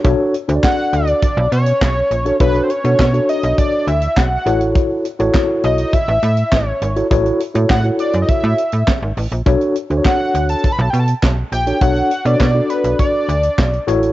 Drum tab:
HH |x-xx--xxx-xx--xx|xxxx-xxxx-xx--xx|x-xx--xxxxxx--xx|xxxx-xxxx-xx--ox|
CP |----x-------x---|----x-------x---|----x-------x---|----x-------x---|
SD |----o-------o---|----o-------o---|----o-------o---|----o-------o---|
BD |o---o---o---o---|o---o---o---o---|o---o---o---o---|o---o---o---o---|

HH |xxxx--xxx-xx--xx|xxxx--xxx-xx-xxx|
CP |----x-------x---|----x-------x---|
SD |----o-------o---|----o-------o---|
BD |o---o---o---o---|o---o---o---o---|